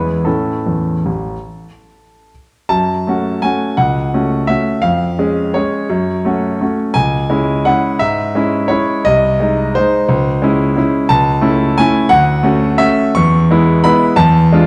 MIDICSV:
0, 0, Header, 1, 2, 480
1, 0, Start_track
1, 0, Tempo, 405405
1, 310, Time_signature, 3, 2, 24, 8
1, 3199, Tempo, 366077
1, 4159, Tempo, 354191
1, 8479, Tempo, 348432
1, 12799, Tempo, 332594
1, 15199, Tempo, 345622
1, 19705, End_track
2, 0, Start_track
2, 0, Title_t, "Grand piano"
2, 0, Program_c, 0, 0
2, 0, Note_on_c, 0, 40, 40
2, 0, Note_on_c, 0, 56, 31
2, 0, Note_on_c, 0, 59, 31
2, 0, Note_on_c, 0, 64, 31
2, 0, Note_on_c, 0, 71, 53
2, 70, Control_c, 0, 64, 127
2, 257, Note_off_c, 0, 56, 0
2, 265, Note_off_c, 0, 59, 0
2, 267, Note_off_c, 0, 64, 0
2, 294, Note_on_c, 0, 69, 48
2, 296, Note_off_c, 0, 40, 0
2, 300, Note_off_c, 0, 71, 0
2, 312, Note_on_c, 0, 64, 27
2, 313, Note_on_c, 0, 61, 27
2, 317, Note_on_c, 0, 45, 33
2, 329, Control_c, 0, 64, 0
2, 594, Control_c, 0, 64, 127
2, 648, Note_off_c, 0, 45, 0
2, 693, Note_off_c, 0, 61, 0
2, 693, Note_off_c, 0, 64, 0
2, 787, Note_on_c, 0, 40, 35
2, 1129, Note_off_c, 0, 40, 0
2, 1254, Note_on_c, 0, 33, 37
2, 1287, Control_c, 0, 64, 0
2, 1597, Note_off_c, 0, 33, 0
2, 1981, Control_c, 0, 64, 127
2, 2716, Note_off_c, 0, 69, 0
2, 2738, Control_c, 0, 64, 0
2, 3186, Note_on_c, 0, 81, 85
2, 3192, Note_on_c, 0, 42, 49
2, 3472, Control_c, 0, 64, 127
2, 3668, Note_off_c, 0, 42, 0
2, 3686, Note_on_c, 0, 57, 37
2, 3697, Note_on_c, 0, 61, 40
2, 3703, Note_on_c, 0, 66, 45
2, 4112, Note_off_c, 0, 57, 0
2, 4118, Note_off_c, 0, 61, 0
2, 4121, Note_off_c, 0, 66, 0
2, 4142, Note_on_c, 0, 80, 79
2, 4153, Note_off_c, 0, 81, 0
2, 4155, Note_on_c, 0, 57, 38
2, 4172, Control_c, 0, 64, 0
2, 4173, Note_on_c, 0, 61, 37
2, 4173, Note_on_c, 0, 66, 43
2, 4584, Note_off_c, 0, 57, 0
2, 4594, Note_off_c, 0, 61, 0
2, 4594, Note_off_c, 0, 66, 0
2, 4616, Note_on_c, 0, 78, 76
2, 4625, Note_off_c, 0, 80, 0
2, 4625, Note_on_c, 0, 37, 49
2, 4862, Control_c, 0, 64, 127
2, 5087, Note_off_c, 0, 37, 0
2, 5115, Note_on_c, 0, 61, 43
2, 5122, Note_on_c, 0, 57, 39
2, 5127, Note_on_c, 0, 66, 47
2, 5545, Note_off_c, 0, 61, 0
2, 5548, Note_off_c, 0, 57, 0
2, 5551, Note_off_c, 0, 66, 0
2, 5568, Note_on_c, 0, 76, 77
2, 5579, Note_off_c, 0, 78, 0
2, 5587, Note_on_c, 0, 57, 39
2, 5591, Note_on_c, 0, 66, 38
2, 5593, Note_on_c, 0, 61, 37
2, 5602, Control_c, 0, 64, 0
2, 6010, Note_off_c, 0, 57, 0
2, 6012, Note_off_c, 0, 66, 0
2, 6013, Note_off_c, 0, 61, 0
2, 6033, Note_on_c, 0, 77, 82
2, 6047, Note_off_c, 0, 76, 0
2, 6053, Note_on_c, 0, 41, 53
2, 6273, Control_c, 0, 64, 127
2, 6525, Note_off_c, 0, 41, 0
2, 6533, Note_on_c, 0, 61, 40
2, 6540, Note_on_c, 0, 56, 45
2, 6542, Note_on_c, 0, 68, 45
2, 6989, Note_off_c, 0, 61, 0
2, 6993, Note_off_c, 0, 56, 0
2, 6994, Note_off_c, 0, 68, 0
2, 7014, Note_on_c, 0, 73, 67
2, 7032, Note_off_c, 0, 77, 0
2, 7035, Note_on_c, 0, 61, 37
2, 7037, Note_on_c, 0, 56, 39
2, 7048, Note_on_c, 0, 68, 41
2, 7058, Control_c, 0, 64, 0
2, 7468, Note_off_c, 0, 61, 0
2, 7469, Note_off_c, 0, 56, 0
2, 7475, Note_off_c, 0, 68, 0
2, 7494, Note_on_c, 0, 42, 56
2, 7737, Control_c, 0, 64, 127
2, 7965, Note_off_c, 0, 42, 0
2, 7976, Note_on_c, 0, 57, 40
2, 7986, Note_on_c, 0, 61, 41
2, 7987, Note_on_c, 0, 66, 45
2, 8421, Note_off_c, 0, 57, 0
2, 8427, Note_off_c, 0, 61, 0
2, 8427, Note_off_c, 0, 66, 0
2, 8464, Note_on_c, 0, 57, 37
2, 8465, Note_on_c, 0, 61, 36
2, 8475, Note_on_c, 0, 66, 40
2, 8490, Control_c, 0, 64, 0
2, 8707, Note_off_c, 0, 73, 0
2, 8901, Note_off_c, 0, 57, 0
2, 8902, Note_off_c, 0, 61, 0
2, 8907, Note_off_c, 0, 66, 0
2, 8916, Note_on_c, 0, 80, 96
2, 8940, Note_on_c, 0, 37, 53
2, 9200, Control_c, 0, 64, 127
2, 9402, Note_off_c, 0, 37, 0
2, 9410, Note_on_c, 0, 56, 47
2, 9419, Note_on_c, 0, 61, 47
2, 9419, Note_on_c, 0, 64, 44
2, 9865, Note_off_c, 0, 56, 0
2, 9870, Note_off_c, 0, 61, 0
2, 9870, Note_off_c, 0, 64, 0
2, 9897, Note_on_c, 0, 78, 84
2, 9902, Note_off_c, 0, 80, 0
2, 9903, Note_on_c, 0, 56, 40
2, 9915, Note_on_c, 0, 61, 43
2, 9925, Note_on_c, 0, 64, 45
2, 9941, Control_c, 0, 64, 0
2, 10346, Note_off_c, 0, 56, 0
2, 10352, Note_off_c, 0, 61, 0
2, 10358, Note_off_c, 0, 64, 0
2, 10369, Note_on_c, 0, 76, 89
2, 10392, Note_off_c, 0, 78, 0
2, 10393, Note_on_c, 0, 44, 58
2, 10624, Control_c, 0, 64, 127
2, 10857, Note_off_c, 0, 44, 0
2, 10862, Note_on_c, 0, 56, 45
2, 10869, Note_on_c, 0, 61, 44
2, 10882, Note_on_c, 0, 64, 53
2, 11299, Note_off_c, 0, 56, 0
2, 11303, Note_off_c, 0, 61, 0
2, 11310, Note_off_c, 0, 64, 0
2, 11313, Note_on_c, 0, 73, 72
2, 11338, Note_off_c, 0, 76, 0
2, 11339, Note_on_c, 0, 56, 44
2, 11341, Note_on_c, 0, 61, 39
2, 11352, Note_on_c, 0, 64, 50
2, 11368, Control_c, 0, 64, 0
2, 11782, Note_off_c, 0, 56, 0
2, 11783, Note_off_c, 0, 61, 0
2, 11790, Note_off_c, 0, 64, 0
2, 11819, Note_off_c, 0, 73, 0
2, 11821, Note_on_c, 0, 75, 94
2, 11837, Note_on_c, 0, 36, 56
2, 12055, Control_c, 0, 64, 127
2, 12298, Note_off_c, 0, 36, 0
2, 12306, Note_on_c, 0, 56, 43
2, 12320, Note_on_c, 0, 63, 52
2, 12745, Note_off_c, 0, 56, 0
2, 12753, Note_off_c, 0, 63, 0
2, 12788, Note_off_c, 0, 75, 0
2, 12790, Note_on_c, 0, 72, 81
2, 12801, Note_on_c, 0, 56, 44
2, 12808, Note_on_c, 0, 63, 53
2, 12810, Control_c, 0, 64, 0
2, 13229, Note_off_c, 0, 56, 0
2, 13233, Note_off_c, 0, 63, 0
2, 13274, Note_on_c, 0, 37, 61
2, 13543, Control_c, 0, 64, 127
2, 13734, Note_off_c, 0, 37, 0
2, 13756, Note_on_c, 0, 56, 53
2, 13768, Note_on_c, 0, 61, 50
2, 13781, Note_on_c, 0, 64, 58
2, 14200, Note_off_c, 0, 56, 0
2, 14207, Note_off_c, 0, 61, 0
2, 14214, Note_off_c, 0, 64, 0
2, 14253, Note_on_c, 0, 56, 45
2, 14265, Note_on_c, 0, 61, 45
2, 14266, Control_c, 0, 64, 0
2, 14275, Note_on_c, 0, 64, 52
2, 14488, Note_off_c, 0, 72, 0
2, 14681, Note_off_c, 0, 56, 0
2, 14688, Note_off_c, 0, 61, 0
2, 14693, Note_off_c, 0, 64, 0
2, 14722, Note_on_c, 0, 81, 102
2, 14742, Note_on_c, 0, 37, 61
2, 14975, Control_c, 0, 64, 127
2, 15191, Note_on_c, 0, 57, 57
2, 15193, Note_off_c, 0, 37, 0
2, 15202, Note_on_c, 0, 64, 59
2, 15205, Note_on_c, 0, 61, 51
2, 15635, Note_off_c, 0, 57, 0
2, 15641, Note_off_c, 0, 64, 0
2, 15643, Note_off_c, 0, 61, 0
2, 15687, Note_off_c, 0, 81, 0
2, 15693, Note_on_c, 0, 80, 102
2, 15705, Control_c, 0, 64, 0
2, 15705, Note_on_c, 0, 57, 53
2, 15717, Note_on_c, 0, 61, 50
2, 15726, Note_on_c, 0, 64, 56
2, 16125, Note_off_c, 0, 57, 0
2, 16132, Note_off_c, 0, 61, 0
2, 16132, Note_on_c, 0, 78, 109
2, 16137, Note_off_c, 0, 64, 0
2, 16150, Note_on_c, 0, 38, 65
2, 16166, Note_off_c, 0, 80, 0
2, 16447, Control_c, 0, 64, 127
2, 16601, Note_off_c, 0, 38, 0
2, 16604, Note_on_c, 0, 57, 59
2, 16618, Note_on_c, 0, 61, 53
2, 16626, Note_on_c, 0, 66, 58
2, 17040, Note_off_c, 0, 57, 0
2, 17047, Note_off_c, 0, 61, 0
2, 17052, Note_off_c, 0, 66, 0
2, 17081, Note_off_c, 0, 78, 0
2, 17086, Note_on_c, 0, 76, 98
2, 17096, Note_on_c, 0, 61, 54
2, 17097, Note_on_c, 0, 57, 56
2, 17102, Note_on_c, 0, 66, 56
2, 17106, Control_c, 0, 64, 0
2, 17569, Note_off_c, 0, 61, 0
2, 17570, Note_off_c, 0, 57, 0
2, 17573, Note_off_c, 0, 66, 0
2, 17598, Note_on_c, 0, 85, 104
2, 17617, Note_off_c, 0, 76, 0
2, 17625, Note_on_c, 0, 40, 68
2, 17843, Control_c, 0, 64, 127
2, 18081, Note_off_c, 0, 40, 0
2, 18097, Note_on_c, 0, 56, 57
2, 18106, Note_on_c, 0, 59, 53
2, 18108, Note_on_c, 0, 64, 67
2, 18520, Note_off_c, 0, 56, 0
2, 18525, Note_off_c, 0, 59, 0
2, 18526, Note_off_c, 0, 64, 0
2, 18553, Note_off_c, 0, 85, 0
2, 18555, Note_on_c, 0, 83, 104
2, 18567, Note_on_c, 0, 56, 55
2, 18569, Note_on_c, 0, 59, 56
2, 18576, Note_on_c, 0, 64, 61
2, 18582, Control_c, 0, 64, 0
2, 18991, Note_off_c, 0, 56, 0
2, 18993, Note_off_c, 0, 59, 0
2, 18997, Note_off_c, 0, 64, 0
2, 19006, Note_on_c, 0, 81, 109
2, 19014, Note_on_c, 0, 40, 73
2, 19032, Note_off_c, 0, 83, 0
2, 19265, Control_c, 0, 64, 127
2, 19490, Note_off_c, 0, 40, 0
2, 19511, Note_on_c, 0, 56, 61
2, 19528, Note_on_c, 0, 62, 56
2, 19532, Note_on_c, 0, 65, 68
2, 19705, Note_off_c, 0, 56, 0
2, 19705, Note_off_c, 0, 62, 0
2, 19705, Note_off_c, 0, 65, 0
2, 19705, Note_off_c, 0, 81, 0
2, 19705, End_track
0, 0, End_of_file